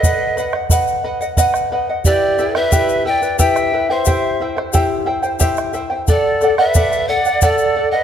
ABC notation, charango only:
X:1
M:3/4
L:1/16
Q:1/4=90
K:Em
V:1 name="Charango"
[B^df]2 [Bdf] [df] [Bdf]2 [Bdf] [df] [Bdf]2 [Bdf] [df] | [EGBeg]2 [EBeg] [EBg] [EGBeg]2 [EBeg] [EBg] [EGBeg]2 [EBeg] [EBg] | [EGceg]2 [Eceg] [Ecg] [EGceg]2 [Eceg] [Ecg] [EGceg]2 [Eceg] [Ecg] | [Adf]2 [Adf] [df] [Adf]2 [Adf] [df] [Adf]2 [Adf] [df] |]